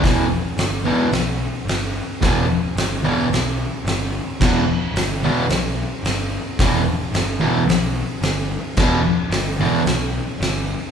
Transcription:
<<
  \new Staff \with { instrumentName = "Distorted electric guitar" } { \clef bass \time 4/4 \key e \minor \tempo 4 = 110 <e, b, e>8 r4 <e, b, e>8 r2 | <e, b, e>8 r4 <e, b, e>8 r2 | <e, b, e>8 r4 <e, b, e>8 r2 | <e, b, e>8 r4 <e, b, e>8 r2 |
<e, b, e>8 r4 <e, b, e>8 r2 | }
  \new Staff \with { instrumentName = "Picked electric bass" } { \clef bass \time 4/4 \key e \minor e,,4 g,,4 b,,4 g,,4 | e,,4 g,,4 b,,4 g,,4 | e,,4 g,,4 b,,4 g,,4 | e,,4 g,,4 b,,4 g,,4 |
e,,4 g,,4 b,,4 g,,4 | }
  \new DrumStaff \with { instrumentName = "Drums" } \drummode { \time 4/4 <hho bd sn>4 <hho sn>4 <hho sn>4 <hho sn>4 | <hho bd sn>4 <hho sn>4 <hho sn>4 <hho sn>4 | <cymc bd sn>4 <hho sn>4 <hho sn>4 <hho sn>4 | <hho bd sn>4 <hho sn>4 <hho sn>4 <hho sn>4 |
<cymc bd sn>4 <hho sn>4 <hho sn>4 <hho sn>4 | }
>>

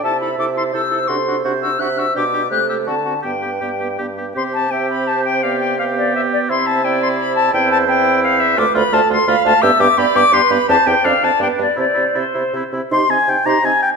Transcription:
<<
  \new Staff \with { instrumentName = "Flute" } { \time 3/4 \key g \major \tempo 4 = 169 a''8 b''8 d'''8 c'''8 e'''4 | c'''4. e'''8 fis'''8 e'''8 | d'''4 fis'''8 e'''8 a''4 | g''2 r4 |
\key c \major c'''8 a''8 g''8 b''8 a''8 g''8 | f''8 g''8 f''8 d''8 e''8 d''8 | c'''8 a''8 g''8 c'''8 b''8 a''8 | g''8 a''8 g''4 f''8 e''8 |
d'''8 b''8 a''8 c'''8 b''8 a''8 | e'''8 d'''8 b''8 d'''8 c'''8 b''8 | a''8 g''8 f''8 a''8 g''8 d''8 | d''4 c''4. r8 |
\key c \minor c'''8 ees''8 g''8 c'''8 ees''8 r8 | }
  \new Staff \with { instrumentName = "Clarinet" } { \time 3/4 \key g \major e''2 c''4 | a'4 c''4 e''4 | d''4 a'4. r8 | b'2~ b'8 r8 |
\key c \major r4 e''4 c''4 | d''4 f''4 g''4 | e''4 d''2 | c''2 c''4 |
b'4 a'4 f''4 | e''4 d''4 b'4 | c''4 d''4 b'4 | c''2~ c''8 r8 |
\key c \minor g'8 c'8 ees'8 g'8 c'8 r8 | }
  \new Staff \with { instrumentName = "Oboe" } { \time 3/4 \key g \major a'8 a'8 a'8 a'8 a'8 a'8 | fis'8 fis'8 fis'8 fis'8 fis'8 fis'8 | g'8 g'8 g'8 g'8 fis'8 fis'8 | g'8 g'8 g'8 g'8 g'8 g'8 |
\key c \major g'4 g'2 | g'4 g'2 | e'4 e'2 | e'4 e'2 |
f'8 f'8 f'8 f'8 f'8 f'8 | g'8 g'8 g'8 g'8 g'8 g'8 | g'8 g'8 d'8 d'8 d'8 d'8 | e'8 e'8 e'8 e'8 e'8 e'8 |
\key c \minor c'''8 aes''8 g''8 bes''8 aes''8 g''8 | }
  \new Staff \with { instrumentName = "French horn" } { \time 3/4 \key g \major e'8 e'8 e'8 e'8 e'8 e'8 | d'8 d'8 d'8 d'8 d'8 d'8 | d'8 d'8 a8 a8 c'8 c'8 | b8 b8 b8 b8 b8 b8 |
\key c \major c'4 c'2 | b4 b2 | c'4 c'2 | c'4 c'2 |
a8 a8 a8 a8 a8 a8 | b8 b8 b8 b8 b8 b8 | c'8 c'8 c'8 c'8 b8 b8 | c'8 c'8 c'8 c'8 c'8 c'8 |
\key c \minor ees'8 ees'8 ees'8 ees'8 ees'8 r8 | }
  \new Staff \with { instrumentName = "Bassoon" } { \clef bass \time 3/4 \key g \major c4 c4 c4 | c4 c4 c4 | b,4 c4 d4 | g,4 g,4 g,4 |
\key c \major c2.~ | c2. | c2. | e,2. |
d,8 d,8 d,8 d,8 d,8 d,8 | g,8 g,8 g,8 g,8 g,8 g,8 | e,8 e,8 f,8 f,8 g,8 g,8 | c8 c8 c8 c8 c8 c8 |
\key c \minor c8 c8 c8 c8 c8 r8 | }
>>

